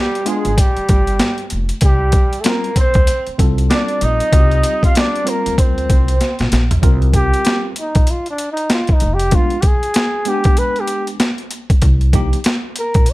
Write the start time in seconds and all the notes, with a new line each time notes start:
Already playing: G3 G4
0.15 closed hi-hat
0.24 G#3 B3 D4 F4 G#4, closed hi-hat
0.45 G#1, closed hi-hat
0.56 G3 G4, kick, closed hi-hat
0.77 muted upright bass stroke, closed hi-hat
0.89 G1, kick, closed hi-hat
1.07 closed hi-hat
1.19 snare, closed hi-hat
1.38 closed hi-hat
1.50 F1, closed hi-hat
1.69 closed hi-hat
1.81 C2 G3 G4, kick, closed hi-hat
2.12 kick, closed hi-hat
2.33 closed hi-hat
2.40 A3 A4
2.44 G3 A#3 C4 F4 A#4, snare, closed hi-hat
2.64 closed hi-hat
2.76 C4 C5, kick, closed hi-hat
2.94 D2, kick, closed hi-hat
3.07 closed hi-hat
3.27 muted upright bass stroke, closed hi-hat
3.38 C2 G3 C4 F4 A4, kick, closed hi-hat
3.58 closed hi-hat
3.70 D4 D5, snare, closed hi-hat
3.88 closed hi-hat
4.01 A#1 D#4 D#5, closed hi-hat
4.20 closed hi-hat
4.32 C2 G3 C4 F4 F#4, kick, closed hi-hat
4.40 G4
4.51 closed hi-hat
4.63 closed hi-hat
4.83 F4 F5, kick, closed hi-hat
4.95 D4 D5, snare, closed hi-hat
5.16 closed hi-hat
5.25 G3 A#3 C4 F4 A#4, closed hi-hat
5.29 A#4
5.46 D2, closed hi-hat
5.58 C4 C5, kick, closed hi-hat
5.78 closed hi-hat
5.90 C2, kick, closed hi-hat
6.08 closed hi-hat
6.21 snare, closed hi-hat
6.39 A#1, snare, closed hi-hat
6.52 A#1, snare, closed hi-hat
6.71 closed hi-hat, floor tom
6.82 C2 G3 C4 F4 A#4, kick, closed hi-hat
7.02 closed hi-hat
7.14 G4, kick, closed hi-hat
7.34 closed hi-hat
7.45 snare, closed hi-hat
7.76 D#4, closed hi-hat
7.95 A#1, kick, closed hi-hat
8.07 closed hi-hat
8.11 F4
8.26 closed hi-hat
8.30 D4
8.38 closed hi-hat
8.52 D#4
8.57 closed hi-hat
8.70 F4, snare, closed hi-hat
8.87 kick, closed hi-hat
8.93 D#4
9.00 F1, closed hi-hat
9.14 G4
9.19 closed hi-hat
9.31 G#3 B3 D4 F4, kick, closed hi-hat
9.35 F4
9.50 closed hi-hat
9.61 G4, kick, closed hi-hat
9.67 G#4
9.83 closed hi-hat
9.94 snare, closed hi-hat
10.25 G#3 B3 D4 G4, closed hi-hat
10.34 G#5
10.44 kick, closed hi-hat
10.57 B4, closed hi-hat
10.76 closed hi-hat
10.80 G4
10.87 closed hi-hat
11.07 closed hi-hat
11.20 snare, closed hi-hat
11.38 closed hi-hat
11.51 closed hi-hat
11.70 kick, closed hi-hat
11.82 C2, kick, closed hi-hat
12.01 closed hi-hat
12.13 F3 A#3 D#4 G4, kick, closed hi-hat
12.33 closed hi-hat
12.44 snare, closed hi-hat
12.76 A#4, closed hi-hat
12.94 A#1, kick, closed hi-hat
13.06 closed hi-hat